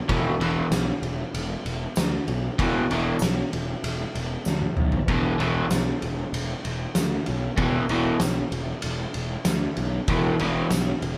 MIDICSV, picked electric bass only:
0, 0, Header, 1, 2, 480
1, 0, Start_track
1, 0, Tempo, 625000
1, 70, Time_signature, 4, 2, 24, 8
1, 8585, End_track
2, 0, Start_track
2, 0, Title_t, "Picked electric bass"
2, 0, Program_c, 0, 34
2, 75, Note_on_c, 0, 28, 88
2, 229, Note_off_c, 0, 28, 0
2, 300, Note_on_c, 0, 28, 88
2, 458, Note_off_c, 0, 28, 0
2, 545, Note_on_c, 0, 35, 85
2, 702, Note_off_c, 0, 35, 0
2, 786, Note_on_c, 0, 28, 86
2, 942, Note_off_c, 0, 28, 0
2, 1031, Note_on_c, 0, 28, 96
2, 1185, Note_off_c, 0, 28, 0
2, 1272, Note_on_c, 0, 28, 92
2, 1426, Note_off_c, 0, 28, 0
2, 1521, Note_on_c, 0, 38, 88
2, 1672, Note_off_c, 0, 38, 0
2, 1750, Note_on_c, 0, 35, 86
2, 1905, Note_off_c, 0, 35, 0
2, 1989, Note_on_c, 0, 28, 93
2, 2144, Note_off_c, 0, 28, 0
2, 2234, Note_on_c, 0, 28, 92
2, 2387, Note_off_c, 0, 28, 0
2, 2471, Note_on_c, 0, 35, 86
2, 2625, Note_off_c, 0, 35, 0
2, 2714, Note_on_c, 0, 28, 88
2, 2867, Note_off_c, 0, 28, 0
2, 2948, Note_on_c, 0, 28, 91
2, 3103, Note_off_c, 0, 28, 0
2, 3190, Note_on_c, 0, 28, 94
2, 3344, Note_off_c, 0, 28, 0
2, 3433, Note_on_c, 0, 38, 90
2, 3586, Note_off_c, 0, 38, 0
2, 3676, Note_on_c, 0, 35, 85
2, 3828, Note_off_c, 0, 35, 0
2, 3907, Note_on_c, 0, 28, 92
2, 4062, Note_off_c, 0, 28, 0
2, 4144, Note_on_c, 0, 28, 93
2, 4300, Note_off_c, 0, 28, 0
2, 4391, Note_on_c, 0, 35, 88
2, 4545, Note_off_c, 0, 35, 0
2, 4632, Note_on_c, 0, 28, 83
2, 4785, Note_off_c, 0, 28, 0
2, 4861, Note_on_c, 0, 28, 95
2, 5018, Note_off_c, 0, 28, 0
2, 5108, Note_on_c, 0, 28, 83
2, 5263, Note_off_c, 0, 28, 0
2, 5355, Note_on_c, 0, 38, 81
2, 5508, Note_off_c, 0, 38, 0
2, 5594, Note_on_c, 0, 35, 90
2, 5747, Note_off_c, 0, 35, 0
2, 5822, Note_on_c, 0, 28, 96
2, 5979, Note_off_c, 0, 28, 0
2, 6060, Note_on_c, 0, 28, 94
2, 6217, Note_off_c, 0, 28, 0
2, 6310, Note_on_c, 0, 35, 86
2, 6465, Note_off_c, 0, 35, 0
2, 6542, Note_on_c, 0, 28, 90
2, 6699, Note_off_c, 0, 28, 0
2, 6789, Note_on_c, 0, 28, 93
2, 6944, Note_off_c, 0, 28, 0
2, 7028, Note_on_c, 0, 28, 89
2, 7184, Note_off_c, 0, 28, 0
2, 7265, Note_on_c, 0, 38, 83
2, 7422, Note_off_c, 0, 38, 0
2, 7508, Note_on_c, 0, 35, 84
2, 7664, Note_off_c, 0, 35, 0
2, 7742, Note_on_c, 0, 28, 93
2, 7900, Note_off_c, 0, 28, 0
2, 7986, Note_on_c, 0, 28, 96
2, 8143, Note_off_c, 0, 28, 0
2, 8226, Note_on_c, 0, 35, 86
2, 8384, Note_off_c, 0, 35, 0
2, 8466, Note_on_c, 0, 28, 88
2, 8585, Note_off_c, 0, 28, 0
2, 8585, End_track
0, 0, End_of_file